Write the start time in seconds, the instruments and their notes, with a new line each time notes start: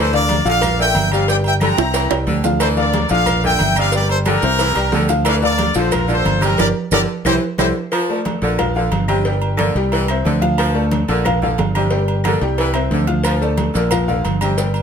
Already playing: fingered electric bass D2, saxophone section E3, trumpet section A4
0.00 trumpet section C5
0.13 grand piano D3 D4 F5, trumpet section A#4 D5, high conga, maracas
0.29 cowbell, high conga, low agogo, maracas
0.45 fingered electric bass A#1, saxophone section D3, grand piano F3 F4 F5, trumpet section D5 F5, cowbell, high conga, maracas
0.61 cowbell, high conga, low conga, low agogo, claves, maracas
0.78 saxophone section D3, grand piano A#3 A#4 D5, trumpet section E5 G5, high conga, maracas
0.94 fingered electric bass G1, cowbell, high conga, low agogo, maracas
1.12 saxophone section C3, grand piano G3 G4 G5, trumpet section D5 F5, high conga, low agogo, claves, maracas
1.28 grand piano G3 G4 G5, trumpet section D5 G5, cowbell, high conga, maracas
1.44 trumpet section E5 G5, high conga, low agogo, maracas
1.60 saxophone section D3, grand piano G3 G4 G5, trumpet section G5 A#5, cowbell, high conga, low agogo, claves, maracas
1.77 fingered electric bass C2, grand piano C4 C5 E5, cowbell, high timbale, maracas
1.94 saxophone section E3, cowbell, high conga, high timbale, low agogo, maracas
2.10 fingered electric bass C2, grand piano G3 G4 G5, cowbell, high conga, high timbale, low agogo, claves, maracas
2.26 fingered electric bass D2, saxophone section D3, cowbell, high conga, maracas
2.43 grand piano F3 F4 F5, high conga, low timbale, low agogo, maracas
2.59 saxophone section E3, grand piano A3 A4 D5, trumpet section A4 C5, cowbell, high conga, low agogo, claves, maracas
2.77 grand piano D3 D4 F5, trumpet section A#4 D5, high conga, maracas
2.93 cowbell, high conga, low agogo, maracas
3.09 fingered electric bass A#1, saxophone section D3, grand piano F3 F4 F5, trumpet section D5 F5, cowbell, high conga, maracas
3.26 cowbell, high conga, low conga, low agogo, claves, maracas
3.43 saxophone section D3, grand piano A#3 A#4 D5, trumpet section E5 G5, high conga, low conga, maracas
3.59 fingered electric bass G1, cowbell, high conga, low agogo, maracas
3.76 saxophone section C3, grand piano G3 G4 G5, trumpet section D5 F5, high conga, low agogo, claves, maracas
3.92 grand piano G3 G4 G5, trumpet section A#4 D5, cowbell, high conga, maracas
4.09 trumpet section A4 C5, high conga, low agogo, maracas
4.25 saxophone section D3, grand piano G3 G4 G5, trumpet section G4 A#4, cowbell, high conga, low agogo, claves, maracas
4.42 fingered electric bass C2, grand piano C4 C5 E5, cowbell, maracas
4.59 saxophone section E3, cowbell, high conga, low agogo, maracas
4.75 fingered electric bass C2, grand piano G3 G4 G5, cowbell, high conga, low agogo, claves, maracas
4.92 fingered electric bass D2, saxophone section D3, cowbell, high conga, low timbale, maracas
5.09 grand piano F3 F4 F5, high conga, low agogo, maracas
5.25 saxophone section E3, grand piano A3 A4 D5, trumpet section D5 F5, cowbell, low agogo, claves, maracas
5.42 grand piano D3 D4 F5, trumpet section A#4 D5, high conga, maracas
5.58 cowbell, high conga, low agogo, maracas
5.74 fingered electric bass A#1, saxophone section D3, grand piano F3 F4 F5, trumpet section A4 C5, cowbell, high conga, maracas
5.92 trumpet section F4 A#4, cowbell, high conga, low conga, low agogo, claves, maracas
6.08 saxophone section D3, grand piano A#3 F4 D5, trumpet section A4 C5, high conga, low conga, maracas
6.25 fingered electric bass G1, cowbell, high conga, low agogo, maracas
6.41 saxophone section C3, grand piano G3 G4 G5, trumpet section G4 A#4, high conga, low agogo, claves, maracas
6.58 fingered electric bass G1, grand piano D4 G4 A#4, trumpet section G4 A#4 D5, cowbell, high conga, high timbale, claves, maracas
6.91 fingered electric bass G1, saxophone section D3, grand piano D4 G4 A#4, trumpet section G4 A#4 D5, cowbell, high conga, high timbale, claves, maracas
7.25 fingered electric bass C2, saxophone section E3, grand piano E4 G4 C5, trumpet section E4 G4 C5, cowbell, high conga, high timbale, claves, maracas
7.58 fingered electric bass C2, saxophone section D3, grand piano E4 G4 C5, trumpet section E4 G4 C5, cowbell, high conga, high timbale, claves, maracas
7.92 saxophone section F3, cowbell, high conga, low agogo, claves
8.09 grand piano A3 A4 D5, high conga
8.25 cowbell, high conga, low agogo
8.42 fingered electric bass A#1, saxophone section D3, grand piano A#3 A#4 D5, cowbell, high conga
8.58 grand piano F3 F4 F5, cowbell, high conga, low conga, low agogo, claves
8.75 saxophone section D3, grand piano F3 F4 F5, high conga
8.92 fingered electric bass G1, cowbell, high conga, low agogo
9.08 saxophone section C3, grand piano G3 G4 G5, high conga, low agogo, claves
9.25 grand piano G3 G4 G5, cowbell, high conga
9.42 high conga, low agogo
9.57 saxophone section D3, grand piano A#3 A#4 D5, cowbell, high conga, low agogo, claves
9.75 fingered electric bass C2, grand piano G3 G4 G5, cowbell
9.92 saxophone section E3, cowbell, high conga, low agogo
10.08 grand piano C4 C5 E5, cowbell, high conga, low agogo, claves
10.25 fingered electric bass D2, saxophone section D3, cowbell, high conga
10.41 grand piano F3 F4 F5, high conga, low agogo
10.58 saxophone section F3, cowbell, high conga, low agogo, claves
10.74 grand piano A3 A4 D5, high conga
10.92 cowbell, high conga, low agogo
11.08 fingered electric bass A#1, saxophone section D3, grand piano A#3 A#4 D5, cowbell, high conga
11.25 grand piano F3 F4 F5, cowbell, high conga, low conga, low agogo, claves
11.41 saxophone section D3, grand piano F3 F4 F5, high conga, low conga
11.58 fingered electric bass G1, cowbell, high conga, low timbale, low agogo
11.75 saxophone section C3, grand piano G3 G4 G5, high conga, low agogo, claves
11.90 grand piano G3 G4 G5, cowbell, high conga
12.08 high conga, low agogo
12.24 saxophone section D3, grand piano A#3 A#4 D5, cowbell, high conga, low agogo, claves
12.41 fingered electric bass C2, grand piano G3 G4 G5, cowbell
12.58 saxophone section E3, cowbell, high conga, low agogo
12.74 grand piano C4 C5 E5, cowbell, high conga, low agogo, claves
12.91 fingered electric bass D2, saxophone section D3, cowbell, high conga
13.07 grand piano F3 F4 F5, high conga, low agogo
13.24 saxophone section F3, cowbell, high conga, low agogo, claves, maracas
13.41 grand piano A3 A4 D5, high conga, maracas
13.57 cowbell, high conga, low agogo, maracas
13.74 fingered electric bass A#1, saxophone section D3, grand piano A#3 A#4 D5, cowbell, maracas
13.91 grand piano F3 F4 F5, cowbell, high conga, low conga, low agogo, claves, maracas
14.07 saxophone section D3, grand piano F3 F4 F5, high conga, low conga, maracas
14.25 fingered electric bass G1, cowbell, high conga, low agogo, maracas
14.41 saxophone section C3, grand piano G3 G4 G5, high conga, low agogo, claves, maracas
14.57 grand piano G3 G4 G5, cowbell, maracas
14.74 high conga, low agogo, maracas